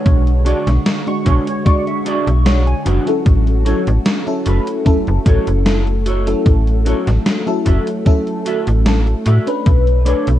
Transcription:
Already playing: D3 G#3 D4 F#4 G#4 C#5
0.06 B1, kick, closed hi-hat
0.27 closed hi-hat
0.45 G#3 D4 F#4 G#4 D5 C#6, closed hi-hat
0.67 B1, snare, closed hi-hat
0.86 snare, closed hi-hat
1.06 G#3 D4 F#4 C#6, closed hi-hat
1.25 B1 D4 F#4 G#4 B4 C#5, kick, closed hi-hat
1.47 C#5, closed hi-hat
1.65 G#3 D4 F#4 D5 C#6, kick, closed hi-hat
1.87 E5, closed hi-hat
2.05 D4 F#4 G#4 D5 E5, closed hi-hat
2.27 B1, closed hi-hat
2.45 G#3 D4 F#4 C#5 F#5, snare, closed hi-hat
2.67 G#5, closed hi-hat
2.85 F#1 D4 F#4 G#4 B4 F#5, closed hi-hat
3.06 F#3 C#4 E4 A4, closed hi-hat
3.26 A1 A3, kick, closed hi-hat
3.47 closed hi-hat
3.65 F#3 C#4 E4 F#4 A4 C#5, closed hi-hat
3.87 A1, closed hi-hat
4.06 snare, closed hi-hat
4.26 F#3 C#4 E4 A4, closed hi-hat
4.45 F#1 F#4 A4 B4, closed hi-hat
4.67 closed hi-hat
4.85 F#1 F#3 C#4 E4 A4, kick, closed hi-hat
5.07 F#1, closed hi-hat
5.26 A1 F#4 A4 C#5, kick, closed hi-hat
5.47 F#1, closed hi-hat
5.65 F#3 C#4 E4 A4, snare, closed hi-hat
5.87 closed hi-hat
6.06 F#4 A4 C#5, closed hi-hat
6.26 F#3 C#4 E4 A4, closed hi-hat
6.46 A1, kick, closed hi-hat
6.67 closed hi-hat
6.85 F#3 C#4 E4 F#4 A4 C#5, closed hi-hat
7.07 A1, snare, closed hi-hat
7.26 snare, closed hi-hat
7.46 F#3 C#4 E4 A4, closed hi-hat
7.65 F#1 F#4 A4 E5, kick, closed hi-hat
7.87 closed hi-hat
8.05 F#3 C#4 E4 A4, kick, closed hi-hat
8.27 closed hi-hat
8.45 F#4 A4 E5, closed hi-hat
8.67 A1, closed hi-hat
8.85 F#3 C#4 E4 A4, snare, closed hi-hat
9.07 closed hi-hat
9.25 A2 F#4 A4 E5, closed hi-hat
9.46 A3 C#4 D4 B4, closed hi-hat
9.66 B1, kick, closed hi-hat
9.87 closed hi-hat
10.05 A3 D4 A4 B4 C#5, closed hi-hat
10.27 B1, closed hi-hat

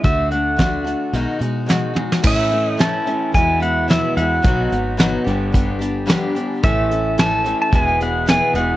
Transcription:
0.03 D2 D3 A3 D4 F#4 E5, kick, closed hi-hat
0.31 A3 D4 F#4 F#5, closed hi-hat
0.56 D3 A3 D4 F#4, kick, snare, closed hi-hat
0.84 A3 D4 F#4, closed hi-hat
1.13 B1 B2 D#3 G#3 D#4 F#4, closed hi-hat
1.39 B2 G#3 D#4 F#4, closed hi-hat
1.66 D#3 G#3 D#4 F#4, snare, closed hi-hat
1.94 G#3 D#4 F#4, high tom
2.12 snare
2.22 A2 E3 A3 C#4 E4, kick, crash
2.27 E5
2.51 A3 C#4 E4, closed hi-hat
2.67 D#5
2.78 A2 E3 A3 C#4 E4 A5, snare, closed hi-hat
3.06 A2 E3 A3 C#4 E4, closed hi-hat
3.32 E2 B2 E3 G#3 B3 E4 G#5, kick, closed hi-hat
3.60 E3 G#3 B3 E4 F#5, closed hi-hat
3.88 E2 B2 E3 G#3 B3 E4 E5, snare, closed hi-hat
4.17 E2 B2 G#3 B3 E4 F#5, closed hi-hat
4.21 E3
4.42 B1 B2 F#3 B3 D#4 F#4, kick, closed hi-hat
4.69 G#1 B3 D#4 F#4, closed hi-hat
4.97 B2 F#3 B3 D#4 F#4, snare, closed hi-hat
5.24 G1 G2 D3 G3 B3 D4 G4, closed hi-hat
5.29 G4
5.52 G3 B3 D4 G4, kick, closed hi-hat
5.79 G3 B3 D4 G4, closed hi-hat
6.06 G2 D3 G3 B3 D4 G4, closed hi-hat
6.10 snare
6.35 G3 B3 D4 G4, closed hi-hat
6.63 A1 A2 E3 A3 C#4 A4 E5, kick, closed hi-hat
6.91 A3 C#4 A4, closed hi-hat
7.18 A2 E3 A3 C#4 A4 A5, snare, closed hi-hat
7.44 A2 E3 C#4 A4, closed hi-hat
7.48 A3
7.62 A5
7.71 E1 E2 B2 E3 G#3 B3 E4, kick, closed hi-hat
7.75 G#4 G#5
8.00 E3 B3 E4 G#4 F#5, closed hi-hat
8.26 E2 B2 E3 B3 E4 G#4 G#5, snare, closed hi-hat
8.54 E1 E2 B2 G#3 B3 E4 G#4 F#5, closed hi-hat
8.58 E3

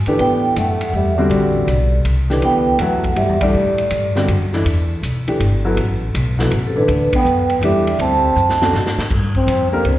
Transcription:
0.06 D3 E3 A3 D4 G4 B4, muted upright bass stroke, ride
0.19 A2 B3 G5, ride
0.56 F#2 A3, hi-hat pedal, ride
0.81 ride
0.93 E2 G3 E5
1.18 D3 G3 C4 F#4 D5
1.30 A1, ride
1.68 B1, hi-hat pedal, ride
2.05 C2, ride
2.30 D3 E3 A3 D4 G4 B4, snare
2.42 D2 B3 G5, ride
2.79 E2 F#3 A3 B3 E4 A4 F#5, hi-hat pedal, ride
3.04 kick, ride
3.16 G2 G3 E5, ride
3.29 E2
3.41 D2 E3 G3 A3 D4 A4 D5, kick, ride
3.54 A2
3.78 ride
3.90 G2, hi-hat pedal, ride
4.15 D3 G3 C4 F#4, snare
4.28 F#2, ride
4.53 E3 A3 D4 E4, snare
4.65 E2, ride
5.02 B1, hi-hat pedal, ride
5.27 E3 A3 D4 G4, muted upright bass stroke, ride
5.40 G1, ride
5.65 F#3 B3 E4 A4
5.77 A1, ride
6.15 B1, hi-hat pedal, ride
6.39 F#3 B3 E4 A4, snare
6.51 A1, ride
6.67 C3 A4
6.76 D3 E3 A3 D4 E4 B4
6.88 D2, ride
7.13 B3 G5, muted upright bass stroke, kick, ride
7.25 F#2, hi-hat pedal
7.49 ride
7.61 E2 E3 G3 A3 D4 G4 E5, ride
7.87 ride
7.99 D2 C4 A5, ride
8.36 F#2, hi-hat pedal
8.49 snare
8.62 A3 C4 D4 F#4, snare
8.73 A2, snare
8.86 snare
8.98 muted upright bass stroke, snare
9.10 G2, kick, crash
9.35 C4, kick
9.47 F2, hi-hat pedal, ride
9.72 A3 A#3 D4 G4 A#4
9.84 C#2 C4, ride

